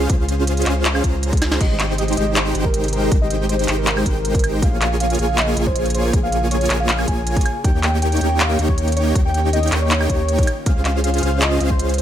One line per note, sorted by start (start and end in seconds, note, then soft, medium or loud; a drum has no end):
0.00 1.57 C#3 medium
0.00 1.57 F4 medium
0.00 1.57 C5 medium
0.10 0.65 C#2 loud
0.10 0.64 C#4 medium
0.10 0.64 F4 medium
0.10 0.64 G#4 medium
0.10 0.64 C5 medium
0.10 0.64 F5 medium
0.10 kick loud
0.10 closed hi-hat medium
0.29 closed hi-hat medium
0.47 closed hi-hat medium
0.57 closed hi-hat medium
0.62 closed hi-hat medium
0.66 1.02 C#2 medium
0.66 1.02 C#4 medium
0.66 1.02 F4 medium
0.66 1.02 G#4 medium
0.66 1.02 C5 medium
0.66 1.02 F5 loud
0.66 clap medium
0.66 closed hi-hat medium
0.85 clap loud
0.85 closed hi-hat medium
0.95 high woodblock medium
1.04 1.59 C#2 loud
1.04 1.58 C#4 medium
1.04 1.58 F4 medium
1.04 1.58 G#4 medium
1.04 1.58 C5 medium
1.04 1.58 A#5 medium
1.04 kick medium
1.04 closed hi-hat medium
1.23 closed hi-hat medium
1.33 kick loud
1.33 closed hi-hat medium
1.37 closed hi-hat medium
1.42 snare medium
1.42 closed hi-hat medium
1.42 high woodblock medium
1.52 snare medium
1.52 high woodblock medium
1.60 2.15 G#1 loud
1.60 4.59 C3 medium
1.60 4.59 G#3 medium
1.60 2.15 G#3 medium
1.60 2.15 D#4 medium
1.60 4.59 G4 loud
1.60 2.15 G4 medium
1.60 2.15 C5 medium
1.60 1.86 D#5 loud
1.60 2.15 G5 medium
1.60 kick loud
1.60 closed hi-hat medium
1.60 crash medium
1.80 clap medium
1.80 closed hi-hat medium
1.98 2.11 D#5 medium
1.98 closed hi-hat medium
2.08 closed hi-hat medium
2.13 closed hi-hat medium
2.17 2.53 G#1 medium
2.17 2.53 G#3 medium
2.17 2.53 D#4 medium
2.17 2.53 G4 medium
2.17 2.53 C5 medium
2.17 2.30 D#5 loud
2.17 2.53 G5 medium
2.17 closed hi-hat medium
2.36 2.55 C5 loud
2.36 clap loud
2.36 closed hi-hat medium
2.55 3.10 G#1 loud
2.55 3.09 G#3 loud
2.55 3.09 D#4 medium
2.55 3.10 G4 medium
2.55 3.10 C5 medium
2.55 3.10 G5 loud
2.55 closed hi-hat medium
2.65 2.84 A#4 loud
2.65 kick medium
2.74 closed hi-hat medium
2.84 closed hi-hat medium
2.88 closed hi-hat medium
2.93 3.12 A#4 loud
2.93 closed hi-hat medium
3.12 3.66 G#1 loud
3.12 3.66 G#3 medium
3.12 3.66 D#4 medium
3.12 3.66 G4 medium
3.12 3.66 C5 medium
3.12 3.66 G5 medium
3.12 kick loud
3.12 closed hi-hat medium
3.21 3.41 D#5 loud
3.30 closed hi-hat medium
3.49 3.68 C5 medium
3.49 closed hi-hat medium
3.59 closed hi-hat medium
3.64 closed hi-hat medium
3.68 4.04 G#1 loud
3.68 4.04 G#3 medium
3.68 4.04 D#4 medium
3.68 4.04 G4 medium
3.68 4.04 C5 medium
3.68 4.04 G5 loud
3.68 clap medium
3.68 closed hi-hat medium
3.78 3.97 A#4 loud
3.87 clap loud
3.87 closed hi-hat medium
3.97 high woodblock medium
4.06 4.64 G#1 loud
4.06 4.60 G#3 loud
4.06 4.60 D#4 medium
4.06 4.60 G4 medium
4.06 4.55 A#4 loud
4.06 4.60 C5 medium
4.06 4.60 G5 loud
4.06 kick medium
4.06 closed hi-hat medium
4.25 closed hi-hat medium
4.35 kick loud
4.35 closed hi-hat medium
4.39 closed hi-hat medium
4.44 closed hi-hat medium
4.44 high woodblock medium
4.62 5.17 A#1 loud
4.62 7.43 C#3 medium
4.62 7.43 A#3 medium
4.62 5.17 A#3 medium
4.62 5.17 F4 medium
4.62 7.43 G#4 medium
4.62 5.17 G#4 medium
4.62 5.17 C#5 medium
4.62 4.88 F5 loud
4.62 5.17 G#5 medium
4.62 kick loud
4.62 closed hi-hat medium
4.81 clap medium
4.81 closed hi-hat medium
5.00 5.13 F5 medium
5.00 closed hi-hat medium
5.10 closed hi-hat medium
5.15 closed hi-hat medium
5.19 5.55 A#1 loud
5.19 5.55 A#3 medium
5.19 5.55 F4 medium
5.19 5.55 G#4 medium
5.19 5.55 C#5 medium
5.19 5.39 F5 loud
5.19 5.55 G#5 medium
5.19 closed hi-hat medium
5.38 5.57 D#5 loud
5.38 clap loud
5.38 closed hi-hat medium
5.57 6.12 A#1 loud
5.57 6.11 A#3 loud
5.57 6.11 F4 medium
5.57 6.11 G#4 medium
5.57 6.11 C#5 medium
5.57 6.11 G#5 loud
5.57 closed hi-hat medium
5.67 5.86 C5 loud
5.67 kick medium
5.76 closed hi-hat medium
5.86 closed hi-hat medium
5.90 closed hi-hat medium
5.95 6.14 C5 loud
5.95 closed hi-hat medium
6.13 6.68 A#1 loud
6.13 6.68 A#3 medium
6.13 6.68 F4 medium
6.13 6.68 G#4 medium
6.13 6.68 C#5 medium
6.13 6.68 G#5 medium
6.13 kick loud
6.13 closed hi-hat medium
6.23 6.42 F5 loud
6.32 closed hi-hat medium
6.51 6.70 C#5 loud
6.51 closed hi-hat medium
6.61 closed hi-hat soft
6.66 closed hi-hat medium
6.70 7.06 A#1 medium
6.70 7.06 A#3 medium
6.70 7.06 F4 medium
6.70 7.06 G#4 medium
6.70 7.06 C#5 medium
6.70 7.06 G#5 loud
6.70 clap medium
6.70 closed hi-hat medium
6.80 6.99 F5 loud
6.89 clap loud
6.89 closed hi-hat medium
6.99 high woodblock medium
7.08 7.43 A#1 loud
7.08 7.44 A#3 loud
7.08 7.44 F4 medium
7.08 7.44 G#4 medium
7.08 7.44 C#5 medium
7.08 7.44 G#5 loud
7.08 7.57 G#5 loud
7.08 kick medium
7.08 closed hi-hat medium
7.27 closed hi-hat medium
7.37 kick loud
7.37 closed hi-hat soft
7.41 closed hi-hat medium
7.46 10.44 D#3 medium
7.46 10.44 C#4 medium
7.46 10.44 G4 medium
7.46 closed hi-hat medium
7.46 high woodblock medium
7.64 8.19 D#2 loud
7.64 8.19 A#3 medium
7.64 8.19 D#4 medium
7.64 8.19 G4 medium
7.64 8.19 C#5 medium
7.64 8.19 G5 medium
7.64 7.90 G5 loud
7.64 kick loud
7.64 closed hi-hat medium
7.83 clap medium
7.83 closed hi-hat medium
8.02 8.15 G5 medium
8.02 closed hi-hat medium
8.12 closed hi-hat soft
8.17 closed hi-hat medium
8.21 8.57 D#2 medium
8.21 8.57 A#3 medium
8.21 8.57 D#4 medium
8.21 8.57 G4 medium
8.21 8.56 C#5 medium
8.21 8.57 G5 medium
8.21 8.41 G5 loud
8.21 closed hi-hat medium
8.40 8.59 F5 loud
8.40 clap loud
8.40 closed hi-hat medium
8.59 9.14 D#2 loud
8.59 9.13 A#3 loud
8.59 9.13 D#4 medium
8.59 9.13 G4 medium
8.59 9.13 C#5 medium
8.59 9.13 G5 loud
8.59 closed hi-hat medium
8.69 8.88 C#5 medium
8.69 kick medium
8.78 closed hi-hat medium
8.88 closed hi-hat soft
8.92 closed hi-hat medium
8.97 9.16 C#5 loud
8.97 closed hi-hat medium
9.15 9.70 D#2 loud
9.15 9.70 A#3 medium
9.15 9.70 D#4 medium
9.15 9.70 G4 medium
9.15 9.70 C#5 medium
9.15 9.70 G5 medium
9.15 kick loud
9.15 closed hi-hat medium
9.25 9.44 G5 loud
9.34 closed hi-hat medium
9.53 9.72 D#5 loud
9.53 closed hi-hat medium
9.63 closed hi-hat soft
9.68 closed hi-hat medium
9.72 10.08 D#2 loud
9.72 10.08 A#3 medium
9.72 10.08 D#4 medium
9.72 10.08 G4 medium
9.72 10.08 C#5 medium
9.72 10.08 G5 loud
9.72 clap medium
9.72 closed hi-hat medium
9.82 10.01 C#5 loud
9.91 clap loud
9.91 closed hi-hat medium
10.01 high woodblock medium
10.09 10.45 D#2 loud
10.09 10.46 A#3 loud
10.09 10.46 D#4 medium
10.09 10.46 G4 medium
10.09 10.59 C#5 loud
10.09 10.46 C#5 medium
10.09 10.46 G5 loud
10.09 kick medium
10.09 closed hi-hat medium
10.29 closed hi-hat medium
10.39 kick loud
10.39 closed hi-hat soft
10.43 closed hi-hat medium
10.47 12.02 C#3 medium
10.47 12.02 F4 medium
10.47 12.02 C5 medium
10.47 closed hi-hat medium
10.47 high woodblock medium
10.66 11.21 C#2 loud
10.66 11.21 C#4 medium
10.66 11.21 F4 medium
10.66 11.21 G#4 medium
10.66 11.21 C5 medium
10.66 11.21 F5 loud
10.66 10.92 F5 loud
10.66 kick loud
10.66 closed hi-hat medium
10.85 clap medium
10.85 closed hi-hat medium
11.04 11.17 F5 medium
11.04 closed hi-hat medium
11.14 closed hi-hat soft
11.18 closed hi-hat medium
11.23 11.59 C#2 loud
11.23 11.58 C#4 medium
11.23 11.58 F4 medium
11.23 11.58 G#4 medium
11.23 11.58 C5 medium
11.23 11.58 F5 loud
11.23 11.36 F5 loud
11.23 closed hi-hat medium
11.42 11.61 D#5 loud
11.42 clap loud
11.42 closed hi-hat medium
11.60 12.02 C#2 loud
11.60 12.02 C#4 loud
11.60 12.02 F4 medium
11.60 12.02 G#4 medium
11.60 12.02 C5 medium
11.60 12.02 F5 loud
11.60 closed hi-hat medium
11.70 11.89 C5 loud
11.70 kick medium
11.79 closed hi-hat medium
11.89 closed hi-hat soft
11.94 closed hi-hat medium
11.98 12.02 C5 loud
11.98 closed hi-hat medium